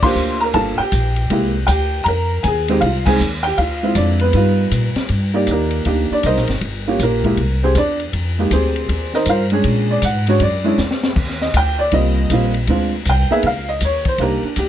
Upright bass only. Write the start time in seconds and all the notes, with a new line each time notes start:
Already playing: D#2
0.15 D2
0.54 G1
0.79 muted upright bass stroke
0.92 A#1
1.30 C2
1.68 D2
2.06 F2
2.44 D#2
2.82 C2
3.20 D#2
3.58 D2
3.95 F2
4.34 G2
4.71 A#2
4.95 muted upright bass stroke
5.09 G2
5.47 D#2
5.86 D2
6.11 muted upright bass stroke
6.24 C2
6.36 A#1
6.48 G1
6.61 G1
6.99 A#1
7.37 C2
7.75 E2
8.13 F2
8.51 D2
8.89 D#2
9.26 G2
9.65 A#2
10.02 G#2
10.40 F#2
10.78 E2
11.16 D#2
11.54 D2
11.92 C2
12.30 A#1
12.67 D2
13.06 C2
13.43 C#2
13.81 D#2
14.18 C2
14.43 muted upright bass stroke
14.57 D2